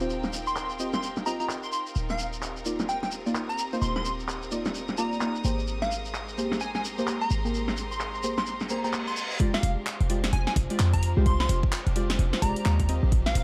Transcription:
Already playing: D#1 C4 D#4 F4 G4 A#4 F5 G5
0.01 C4 F4 G4 C5
0.10 shekere
0.23 snare, shekere
0.33 shekere
0.47 C6, shekere
0.56 clap, shekere
0.70 shekere
0.79 C4 F4 G4 D#5, shekere
0.93 C6, snare, shekere
1.03 shekere
1.16 snare, shekere
1.26 C4 F4 G4 D#5 A#5, shekere
1.40 C4 F4 G4 D#5 A#5, shekere
1.49 clap, shekere
1.63 C6, closed hi-hat, shekere
1.72 C6, shekere
1.87 shekere
1.95 D#1 C4 D#4, closed hi-hat, shekere
2.09 F5, snare, shekere
2.19 shekere
2.29 G4, shekere
2.42 clap, shekere
2.57 shekere
2.66 A#3 D#4 F4 D5, shekere
2.74 D#6
2.79 snare, closed hi-hat, shekere
2.89 G5, shekere
3.03 G5, snare, shekere
3.12 shekere
3.26 A#3 D#4 F4 D5, closed hi-hat, shekere
3.35 clap, shekere
3.49 A#5, closed hi-hat, shekere
3.58 shekere
3.73 A#3 D#4 F4 C5, shekere
3.82 D#1 C6, closed hi-hat, shekere
3.95 C6, snare, shekere
4.05 shekere
4.19 shekere
4.28 clap, shekere
4.42 closed hi-hat, shekere
4.51 A#3 D#4 F4 D5, shekere
4.65 snare, closed hi-hat, shekere
4.75 closed hi-hat, shekere
4.88 snare, shekere
4.98 A#3 D#4 F4 D5 A#5, shekere
5.12 closed hi-hat, shekere
5.21 A#3 D#4 F4 D5, clap, shekere
5.35 closed hi-hat, shekere
5.45 G#1 G#3 A#3 C4 G4 G#4 C5, closed hi-hat, shekere
5.59 shekere
5.67 closed hi-hat, shekere
5.80 F5 A#5, snare, shekere
5.90 C6, shekere
6.05 shekere
6.14 clap, shekere
6.28 closed hi-hat, shekere
6.38 A#3 G4 G#4 C5, shekere
6.52 snare, closed hi-hat, shekere
6.60 G#5, closed hi-hat, shekere
6.75 G#5, snare, shekere
6.85 shekere
6.98 A#3 G4 G#4 C5, closed hi-hat, shekere
7.07 clap, shekere
7.21 A#5, closed hi-hat, shekere
7.31 G#1, closed hi-hat, shekere
7.45 A#3 G4 G#4 A#4, shekere
7.54 closed hi-hat, shekere
7.68 snare, shekere
7.77 shekere
7.91 C6, shekere
8.00 clap, shekere
8.14 closed hi-hat, shekere
8.23 A#3 G4 G#4 C5, shekere
8.38 C6, snare, closed hi-hat, shekere
8.46 closed hi-hat, reverse cymbal, shekere
8.60 snare, shekere
8.70 A#3 G4 G#4 C5 A#5, shekere
8.84 A#3 G4 G#4 C5 A#5, closed hi-hat, shekere
8.93 clap, shekere
9.07 C6, shekere
9.17 C6, shekere
9.31 shekere
9.40 G#3 C4 D4 F4 G4 D5, kick, closed hi-hat
9.54 F5, snare
9.63 F1, open hi-hat
9.80 C5
9.86 clap
10.01 F1, closed hi-hat
10.10 G#3 F4 G4 D5, open hi-hat
10.24 snare, closed hi-hat
10.33 F1 G#5, closed hi-hat
10.47 G#5, snare
10.56 F1, kick, open hi-hat
10.70 G#3 F4 G4 D5, closed hi-hat
10.79 F2, clap
10.93 A#5, kick, closed hi-hat
11.03 open hi-hat
11.17 C2 G#3 F4 G4 C5
11.26 C6, kick, closed hi-hat
11.40 C6, snare
11.49 F1, open hi-hat
11.63 kick
11.72 clap
11.87 F1, closed hi-hat
11.96 G#3 F4 G4 D5, open hi-hat
12.10 snare, closed hi-hat
12.19 F1, closed hi-hat
12.33 snare
12.42 F1 G#3 F4 G4 D5 A#5, kick, open hi-hat
12.56 closed hi-hat
12.65 D#2 G#3 F4 G4 D5, clap
12.80 kick, closed hi-hat
12.89 D#3 A#3 C4 F4 G4 D#5, open hi-hat
13.03 A#1
13.12 kick, closed hi-hat
13.18 A#4
13.26 F5, snare
13.33 D#1 F5, open hi-hat

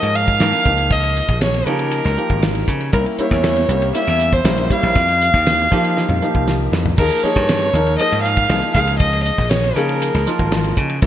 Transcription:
Already playing: F3 A#3 D#4 A#4 D#5
0.03 G#2, ride
0.15 F5, hi-hat pedal
0.28 kick, ride
0.40 G#2 F3 A#3 D#4 A#4, snare, hi-hat pedal, ride
0.53 ride
0.65 C#2 F3 A#3 D#4 G4, kick, hi-hat pedal
0.78 ride
0.90 D#5, kick, hi-hat pedal, ride
1.03 ride
1.16 hi-hat pedal
1.28 A#1, kick, ride
1.41 C#5, snare, hi-hat pedal, ride
1.54 ride
1.66 C#3 F3 A#3 D#4 G4 A#4, hi-hat pedal
1.79 ride
1.91 hi-hat pedal, ride
2.04 C#2, snare, ride
2.16 F3 A#3 D#4 G4, hi-hat pedal
2.29 G#1, kick, ride
2.42 snare, hi-hat pedal, ride
2.55 ride
2.68 C#3, kick, hi-hat pedal
2.81 ride
2.93 C2 G3 A#3 C#4 E4 A#4, kick, hi-hat pedal, ride
3.06 ride
3.17 G3 A#3 C#4 E4 C#5, muted slap bass stroke, hi-hat pedal
3.31 E2, kick, snare, ride
3.44 snare, hi-hat pedal, ride
3.56 ride
3.68 C2 G3 A#3 C#4 G4, hi-hat pedal
3.82 ride
3.94 G3 A#3 C#4 E4 E5, hi-hat pedal, ride
4.07 E2, snare, ride
4.19 hi-hat pedal
4.32 C5, kick, ride
4.44 A#1 G3 A#3 C#4 E4, snare, hi-hat pedal, ride
4.58 ride
4.69 G3 A#3 C#4 E4 F5, kick, hi-hat pedal
4.83 A#1, ride
4.95 F2, kick, hi-hat pedal, ride
5.08 ride
5.21 hi-hat pedal
5.34 D#2, kick, snare, ride
5.46 snare, hi-hat pedal, ride
5.59 ride
5.71 F3 A#3 D#4 G4, kick, hi-hat pedal
5.84 ride
5.97 snare, hi-hat pedal
6.09 F2, high tom
6.22 F3 A#3 D#4 G4, hi-hat pedal
6.34 C2, kick
6.47 snare, hi-hat pedal
6.72 F2, snare, hi-hat pedal
6.86 floor tom
6.97 D#2 F3 A#3 D#4 G#4 A#4, kick, crash
7.11 ride
7.23 F3 A#3 D#4 G#4 C#5, muted slap bass stroke, hi-hat pedal
7.36 G2, kick, ride
7.49 snare, hi-hat pedal, ride
7.62 ride
7.73 D#2 F3 A#3 D#4 A#4, hi-hat pedal
7.86 ride
7.98 F3 A#3 D#4 G#4 D#5, hi-hat pedal, ride
8.12 G#2, ride
8.22 F5, hi-hat pedal
8.37 kick, ride
8.49 C2 F3 A#3 D#4 G#4, snare, hi-hat pedal, ride
8.62 ride
8.74 C#2 F3 A#3 D#4 G#4 F5, kick, hi-hat pedal
8.87 ride
8.99 D#5, kick, hi-hat pedal, ride
9.13 ride
9.23 D#5, hi-hat pedal
9.38 A#1, kick, snare, ride
9.49 C#5, snare, hi-hat pedal, ride
9.64 ride
9.75 C#3 F3 A#3 D#4 G#4 A#4, hi-hat pedal
9.89 ride
10.02 hi-hat pedal, ride
10.14 C#2, snare, ride
10.26 F3 A#3 D#4 F4, snare, hi-hat pedal
10.39 G#1, kick, ride
10.52 snare, hi-hat pedal, ride
10.64 ride
10.77 C#3, kick, hi-hat pedal
10.89 ride
11.02 C2 A#3 C#4 E4 G4, kick, hi-hat pedal, ride

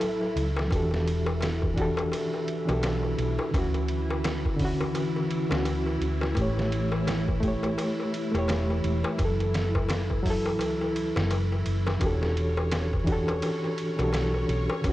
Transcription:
Already playing: A1 F#3 E4 A4, swell
0.00 ride, darbuka tek
0.21 darbuka tek
0.36 C#2, ride
0.57 snare, darbuka tek
0.68 E1 E3 D4 E4, kick, darbuka tek
0.72 F#4 G4 A4, ride
0.91 snare, darbuka tek
1.07 ride
1.26 darbuka tek
1.41 snare, ride, darbuka tek
1.62 kick, darbuka tek
1.74 E3 D4 F#4, kick, ride
1.80 G4 A4
1.97 ride, darbuka tek
2.12 ride, darbuka tek
2.34 darbuka tek
2.48 ride
2.65 B1 E3 D4 F#4, ride, darbuka tek
2.71 G4 A4
2.83 snare, ride, darbuka tek
3.03 darbuka tek
3.18 B1, ride
3.39 darbuka tek
3.51 D2 D3 C#4, kick, ride, darbuka tek
3.59 F#4
3.74 ride, darbuka tek
3.88 ride
4.11 darbuka tek
4.24 snare, ride, darbuka tek
4.45 kick, darbuka tek
4.57 D3, kick, open hi-hat
4.61 C#4 F#4
4.81 darbuka tek
4.95 A1, ride, darbuka tek
5.16 darbuka tek
5.31 ride
5.49 D2 D3 C#4, snare, darbuka tek
5.56 F#4
5.65 ride, darbuka tek
5.86 darbuka tek
6.01 D2, ride
6.21 snare, darbuka tek
6.34 A1 A3, kick, ride, darbuka tek
6.38 G4 C#5
6.57 snare, darbuka tek
6.72 ride
6.92 darbuka tek
7.07 snare, ride, darbuka tek
7.28 kick, darbuka tek
7.40 A3 G4, kick, ride
7.48 C#5
7.63 ride, darbuka tek
7.78 ride, darbuka tek
8.00 darbuka tek
8.14 ride
8.31 E1 A3 G4, ride, darbuka tek
8.39 C#5
8.48 snare, ride, darbuka tek
8.70 darbuka tek
8.84 E1, ride
9.04 darbuka tek
9.17 F#1 F#3 E4, kick, ride, darbuka tek
9.25 A4
9.40 ride, darbuka tek
9.54 snare, ride
9.75 kick, darbuka tek
9.89 snare, ride, darbuka tek
10.10 kick, darbuka tek
10.23 F#3 E4, kick, open hi-hat
10.30 A4
10.46 darbuka tek
10.59 C#2, ride, darbuka tek
10.81 darbuka tek
10.96 ride
11.16 F#1, snare, darbuka tek
11.31 ride, darbuka tek
11.52 darbuka tek
11.66 F#1, ride
11.87 snare, darbuka tek
11.98 E1 E3 D4 F#4 C#5, kick, ride, darbuka tek
12.04 G4 A4
12.21 snare, darbuka tek
12.37 ride
12.57 darbuka tek
12.71 snare, ride, darbuka tek
12.93 kick, darbuka tek
13.04 E3 D4 F#4, kick, ride
13.10 G4 A4
13.28 ride, darbuka tek
13.42 ride, darbuka tek
13.64 darbuka tek
13.78 ride
13.96 B1 E3 D4 F#4, ride, darbuka tek
14.02 G4 A4
14.13 snare, ride, darbuka tek
14.34 darbuka tek
14.49 B1, ride
14.70 darbuka tek
14.81 D2 D3 C#4, kick, ride, darbuka tek
14.89 F#4

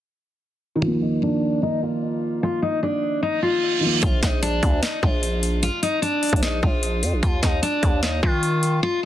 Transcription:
0.75 D#3
0.81 F3 F4
0.87 A#3
1.02 D#4
1.23 D4
1.63 D#4
1.83 F4
2.43 F4
2.62 D#4
2.83 D4
3.23 D#4, reverse cymbal
3.42 F4
3.80 D#3 F3
3.86 A#3
4.03 A#1 F4, kick, closed hi-hat
4.23 A#1 D#4, kick, snare, closed hi-hat
4.42 D4, closed hi-hat
4.63 D2, kick, closed hi-hat
4.82 D#4, snare, closed hi-hat
5.03 A#1 F4, kick
5.23 closed hi-hat
5.43 closed hi-hat
5.63 F4, closed hi-hat
5.83 D#4, closed hi-hat
6.02 D4, closed hi-hat
6.23 closed hi-hat, open hi-hat
6.29 A#1, kick, closed hi-hat
6.36 closed hi-hat
6.43 D#4, snare, closed hi-hat
6.63 A#1 F4, kick
6.83 closed hi-hat
7.03 F2, closed hi-hat
7.13 A#1
7.23 D#2 F4, kick, closed hi-hat
7.42 D#2 D#4, kick, snare, closed hi-hat
7.63 D4, closed hi-hat
7.83 D#2, kick, closed hi-hat
8.03 D#4, snare, closed hi-hat
8.23 D#3 F4, kick
8.43 closed hi-hat
8.63 closed hi-hat
8.83 F4

